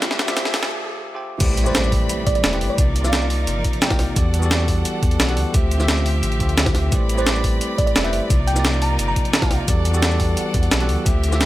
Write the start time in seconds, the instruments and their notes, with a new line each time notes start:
Already playing: string section G3 D4, riser
0.01 tine electric piano D3 A3 F4 G4 C5 E5, string section F4 C5 E5, snare, closed hi-hat, shaker
0.11 snare
0.19 snare, closed hi-hat, shaker
0.25 tine electric piano D3 A3 F4, snare, closed hi-hat, shaker
0.29 tine electric piano G4 C5 E5
0.37 snare, closed hi-hat, shaker
0.45 snare, shaker
0.54 snare, open hi-hat, shaker
0.63 snare, closed hi-hat
1.13 tine electric piano D3 A3 F4 G4 C5 G5
1.39 sub bass A1, string section G3 C4 D5 B5, tine electric piano A3 E4 G4 B4 C5 D5, kick, closed hi-hat, crash, impact, shaker
1.57 closed hi-hat, shaker
1.63 tine electric piano A3 E4 G4 B4, fm electric piano C5, shaker
1.68 tine electric piano C5 D5
1.75 snare, closed hi-hat, shaker
1.84 shaker
1.92 kick, open hi-hat
2.09 closed hi-hat, shaker
2.27 sub bass A1, fm electric piano D5, kick, closed hi-hat
2.35 fm electric piano D5, closed hi-hat
2.44 sub bass E1, snare, closed hi-hat, shaker
2.51 tine electric piano A3 E4 G4 B4 C5 G5, closed hi-hat
2.61 sub bass G1, open hi-hat
2.70 fm electric piano D5
2.77 sub bass C2, tine electric piano C3 A#3 D#4 F4 D5, string section F3 D#4 A#4, kick, closed hi-hat, shaker
2.96 closed hi-hat, shaker
3.01 tine electric piano C3 A#3 D#4, fm electric piano F5, snare, shaker
3.06 tine electric piano F4 D5
3.13 snare, closed hi-hat, shaker
3.22 shaker
3.30 open hi-hat
3.47 sub bass G1, closed hi-hat, shaker
3.64 sub bass A#1, kick, closed hi-hat
3.73 closed hi-hat
3.82 fm electric piano G5, snare, closed hi-hat, shaker
3.89 tine electric piano C3 A#3 D#4 F4 F5, kick, snare, closed hi-hat
3.99 sub bass C2, snare, open hi-hat
4.15 sub bass E2, tine electric piano E3 B3 F#4 G4 A4 D5, string section G3 A4 F#5, kick, closed hi-hat, shaker
4.34 closed hi-hat, shaker
4.39 tine electric piano E3 B3 F#4 G4, shaker
4.44 tine electric piano A4 D5
4.51 snare, closed hi-hat, shaker
4.60 shaker
4.68 kick, open hi-hat
4.85 closed hi-hat, shaker
5.03 sub bass E2, kick, closed hi-hat
5.11 closed hi-hat
5.20 sub bass B1, snare, closed hi-hat, shaker
5.27 tine electric piano E3 B3 F#4 G4 A4 F#5, closed hi-hat
5.37 sub bass D2, open hi-hat
5.53 sub bass D2, tine electric piano D3 A3 F4 G4 C5 E5, string section F3 C4 G4 E5, kick, closed hi-hat, shaker
5.71 closed hi-hat, shaker
5.77 tine electric piano D3 A3 F4 G4, snare, shaker
5.82 tine electric piano C5 E5
5.88 snare, closed hi-hat, shaker
5.97 shaker
6.06 open hi-hat
6.23 sub bass A1, closed hi-hat, shaker
6.32 closed hi-hat
6.39 sub bass D2, tine electric piano D3 A3 F4 G4 C5 E5, kick, closed hi-hat
6.49 closed hi-hat
6.58 snare, closed hi-hat, shaker
6.66 kick, snare, closed hi-hat, shaker
6.75 sub bass D2, snare, open hi-hat
6.91 sub bass A1, string section G3 D5 B5, tine electric piano A3 E4 G4 B4 C5 D5, kick, closed hi-hat, shaker
7.09 closed hi-hat, shaker
7.15 tine electric piano A3 E4 G4 B4, fm electric piano C5, shaker
7.21 tine electric piano C5 D5
7.27 snare, closed hi-hat, shaker
7.35 shaker
7.44 kick, open hi-hat
7.61 closed hi-hat, shaker
7.78 sub bass A1, fm electric piano D5, kick, closed hi-hat
7.87 fm electric piano D5, closed hi-hat
7.96 sub bass E1, snare, closed hi-hat, shaker
8.03 tine electric piano A3 E4 G4 B4 C5 G5, fm electric piano E5, closed hi-hat
8.13 sub bass G1, open hi-hat
8.29 sub bass C2, tine electric piano C3 A#3 D#4 F4 D5, string section F3 D#4 A#4, kick, closed hi-hat, shaker
8.47 fm electric piano G5, closed hi-hat, shaker
8.53 tine electric piano C3 A#3 D#4, snare, shaker
8.58 tine electric piano F4 D5
8.65 snare, closed hi-hat, shaker
8.73 shaker
8.82 fm electric piano A#5, open hi-hat
8.99 sub bass G1, closed hi-hat, shaker
9.08 fm electric piano A#5
9.16 sub bass A#1, kick, closed hi-hat
9.25 closed hi-hat
9.33 snare, closed hi-hat, shaker
9.40 tine electric piano C3 A#3 D#4 F4 F5, kick, snare, closed hi-hat
9.51 sub bass C2, snare, open hi-hat
9.66 sub bass E2, tine electric piano E3 B3 F#4 G4 A4 D5, string section G3 A4 F#5, kick, closed hi-hat, shaker
9.85 closed hi-hat, shaker
9.91 tine electric piano E3 B3 F#4 G4, shaker
9.96 tine electric piano A4 D5
10.03 snare, closed hi-hat, shaker
10.11 shaker
10.20 kick, open hi-hat
10.37 closed hi-hat, shaker
10.54 sub bass E2, kick, closed hi-hat
10.63 closed hi-hat
10.71 sub bass B1, snare, closed hi-hat, shaker
10.79 tine electric piano E3 B3 F#4 G4 A4 F#5, closed hi-hat
10.89 sub bass D2, open hi-hat
11.04 sub bass D2, tine electric piano D3 A3 F4 G4 C5 E5, string section F3 C4 G4 E5, kick, closed hi-hat, shaker
11.24 closed hi-hat, shaker
11.29 tine electric piano D3 A3 F4, snare, shaker
11.33 tine electric piano G4 C5 E5
11.41 snare, closed hi-hat, shaker